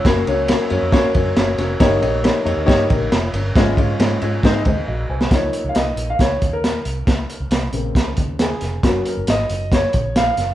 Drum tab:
RD |x-x-x-x-x-x-x-x-|x-x-x-x-x-x-x-x-|x-x-x-x-x-x-----|----------------|
HH |----------------|----------------|----------------|x-x-x-x-x-x-x-x-|
SD |o---o---o---o-o-|o---o---o---o---|o---o---o------o|o---o---o---o---|
BD |o-------o-o-----|o-------o-o-----|o-o-----o-o-----|o-------o-o-----|

RD |----------------|----------------|
HH |x-x-x-x-x-x-x-x-|x-x-x-x-x-x-x-x-|
SD |o---o---o---o-o-|o---o---o---o-o-|
BD |o-------o-o-----|o-------o-o-----|